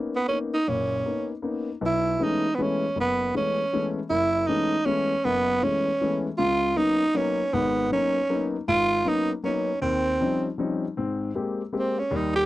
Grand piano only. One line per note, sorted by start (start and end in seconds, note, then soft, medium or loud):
0.00 0.15 A#3 soft
0.00 0.16 B3 soft
0.00 0.16 C#4 soft
0.00 0.16 D#4 soft
0.28 0.54 A#3 soft
0.28 0.54 B3 soft
0.28 0.54 C#4 soft
0.28 0.55 D#4 medium
0.68 1.00 F#1 medium
0.68 1.00 A#2 medium
1.05 1.31 A#3 soft
1.05 1.31 B3 soft
1.05 1.31 C#4 soft
1.05 1.31 D#4 soft
1.42 1.68 A#3 soft
1.42 1.68 B3 soft
1.42 1.68 C#4 soft
1.42 1.69 D#4 soft
1.81 2.14 B1 medium
1.81 2.14 B2 medium
2.19 2.45 E3 soft
2.19 2.45 G#3 soft
2.19 2.45 A3 soft
2.19 2.45 B3 soft
2.19 2.46 C#4 medium
2.58 2.83 E3 medium
2.58 2.83 G#3 soft
2.58 2.84 A3 soft
2.58 2.84 B3 soft
2.58 2.84 C#4 medium
2.96 3.29 F#1 medium
3.35 3.60 E3 soft
3.35 3.60 G#3 soft
3.35 3.60 A3 soft
3.35 3.60 B3 soft
3.35 3.60 C#4 medium
3.73 3.98 E3 medium
3.73 3.98 G#3 soft
3.73 3.98 A3 soft
3.73 3.98 B3 soft
3.73 3.98 C#4 medium
4.10 4.43 F#1 medium
4.10 4.43 F#2 medium
4.49 4.74 E3 medium
4.49 4.74 G#3 soft
4.49 4.74 A3 soft
4.49 4.74 B3 soft
4.49 4.74 C#4 medium
4.85 5.11 E3 medium
4.85 5.11 G#3 soft
4.85 5.11 A3 soft
4.85 5.12 B3 soft
4.85 5.12 C#4 medium
5.25 5.58 F#1 medium
5.25 5.57 F#2 medium
5.63 5.88 E3 soft
5.63 5.88 G#3 soft
5.63 5.88 A3 soft
5.63 5.88 B3 soft
5.63 5.88 C#4 soft
6.01 6.26 E3 medium
6.01 6.26 G#3 soft
6.01 6.27 A3 soft
6.01 6.26 B3 soft
6.01 6.27 C#4 medium
6.39 6.72 C#2 medium
6.39 6.71 C#3 medium
6.76 7.02 F#3 soft
6.76 7.02 A#3 soft
6.76 7.02 B3 soft
6.76 7.02 C#4 soft
6.76 7.02 D#4 medium
7.14 7.40 F#3 medium
7.14 7.40 A#3 medium
7.14 7.40 B3 soft
7.14 7.40 C#4 soft
7.14 7.41 D#4 medium
7.53 7.86 G#1 medium
7.53 7.86 G#2 medium
7.91 8.17 F#3 soft
7.91 8.17 A#3 soft
7.91 8.17 B3 soft
7.91 8.17 C#4 soft
7.91 8.17 D#4 medium
8.29 8.55 F#3 medium
8.29 8.55 A#3 soft
8.29 8.55 B3 soft
8.29 8.55 C#4 soft
8.29 8.56 D#4 medium
8.68 9.01 G#1 medium
9.05 9.31 F#3 soft
9.05 9.31 A#3 soft
9.05 9.31 B3 medium
9.05 9.31 C#4 soft
9.05 9.31 D#4 medium
9.43 9.69 F#3 medium
9.43 9.69 A#3 soft
9.43 9.69 B3 soft
9.43 9.69 C#4 medium
9.43 9.70 D#4 medium
9.82 10.15 D#2 medium
10.21 10.46 F3 soft
10.21 10.46 G3 soft
10.21 10.46 C4 soft
10.21 10.46 C#4 soft
10.21 10.46 D#4 medium
10.58 10.84 F3 soft
10.58 10.84 G3 soft
10.58 10.84 C4 soft
10.58 10.84 C#4 medium
10.58 10.84 D#4 medium
10.97 11.30 G#2 medium
10.97 11.30 C4 medium
11.35 11.60 G#3 soft
11.35 11.60 A#3 soft
11.35 11.61 C4 soft
11.35 11.61 G4 medium
11.73 11.98 G#3 medium
11.73 11.98 A#3 medium
11.73 11.98 C4 medium
11.73 11.99 G4 medium
12.11 12.44 D#2 medium
12.11 12.43 G3 medium